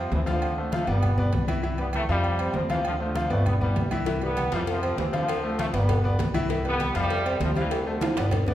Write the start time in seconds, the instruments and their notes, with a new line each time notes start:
Already playing: trombone section C3 F3
0.11 upright bass D2, trombone section C3 E3, upright piano C4 C5, high conga, low timbale
0.26 trombone section D3 F3, upright piano F3 F4 F5, high conga, low agogo
0.42 high conga, low agogo
0.57 upright piano A3 A4 C5, high conga
0.72 upright piano F3 F4 F5, trombone section F3 A3, high conga, low timbale, low agogo
0.87 upright bass G1, trombone section G3 B3, upright piano B3 B4 D5, high conga, low agogo
1.03 high conga, low conga, low agogo
1.18 upright piano B3 B4 D5, high conga, low conga
1.33 upright bass C2, high conga, low timbale, low agogo
1.48 upright piano E3 E4 E5, high conga, low agogo
1.63 upright piano E3 E4 E5, high conga, low agogo
1.78 upright piano G3 G4 B4, trombone section G3 B3, high conga, low agogo
1.93 trombone section E3 A3, high conga, low timbale, low agogo
2.09 upright bass F2, trombone section C3 G3, upright piano F3 F4 F5, high conga
2.24 high conga, low agogo
2.39 upright piano C4 C5, high conga, low agogo
2.54 upright bass D2, trombone section C3 F3, upright piano C4 C5, high conga, low timbale
2.70 trombone section C3 E3, upright piano F3 F4 F5, high conga, low agogo
2.85 trombone section D3 F3, high conga, low agogo
3.00 trombone section D3 F3, upright piano A3 A4 C5, high conga
3.15 upright piano F3 F4 F5, high conga, low timbale, low agogo
3.30 upright bass G1, trombone section F3 A3, upright piano B3 B4 D5, high conga, low agogo
3.46 trombone section G3 B3, high conga, low conga, low agogo
3.61 trombone section E3 G3, upright piano B3 B4 D5, high conga, low conga
3.76 upright bass C2, high conga, low timbale, low agogo
3.91 upright piano E3 E4 E5, high conga, low agogo
4.06 upright piano E3 E4 E5, cowbell, high conga, low agogo
4.22 upright piano G3 G4 B4, trombone section G3 B3, high conga, low agogo
4.37 cowbell, high conga, low timbale, low agogo
4.52 upright bass F2, trombone section E3 G3, upright piano F3 F4 F5, cowbell, high conga
4.67 trombone section C3 F3, cowbell, high conga, low agogo
4.83 upright piano C4 C5, high conga, low agogo
4.97 upright bass D2, trombone section C3 E3, upright piano C4 C5, cowbell, high conga, low timbale
5.13 trombone section D3 F3, upright piano F3 F4 F5, high conga, low agogo
5.28 cowbell, high conga, low agogo
5.43 upright piano A3 A4 C5, high conga
5.59 upright piano F3 F4 F5, trombone section F3 A3, cowbell, high conga, low timbale, low agogo
5.73 upright bass G1, trombone section G3 B3, upright piano B3 B4 D5, cowbell, high conga, low agogo
5.89 cowbell, high conga, low conga, low agogo
6.04 upright piano B3 B4 D5, high conga
6.19 upright bass C2, cowbell, high conga, low timbale, low agogo
6.34 upright piano E3 E4 E5, high conga, low agogo
6.50 upright piano E3 E4 E5, cowbell, high conga, low agogo
6.64 upright piano G3 G4 B4, trombone section G3 B3, high conga, low agogo
6.79 cowbell, high conga, low timbale, low agogo
6.95 upright bass F2, trombone section C3 G3, upright piano F3 F4 F5, cowbell, high conga
7.10 cowbell, high conga, low agogo
7.25 upright piano C4 C5, high conga, low agogo
7.40 upright bass D2, trombone section C3 F3, upright piano C4 C5, cowbell, high conga, low timbale
7.55 trombone section C3 E3, upright piano G3 G4 F5, high conga, low agogo
7.71 cowbell, high conga, low agogo
7.86 trombone section B2 D3, upright piano A3 A4 C5, high conga
8.01 upright piano F3 F4 F5, cowbell, high conga, high timbale, low agogo
8.16 upright bass G1, upright piano B3 B4 D5, cowbell, high conga, high timbale, low agogo
8.31 cowbell, high bongo, high conga, low conga, high timbale, low agogo
8.47 upright piano B3 B4 D5, high bongo, high conga, low conga, low timbale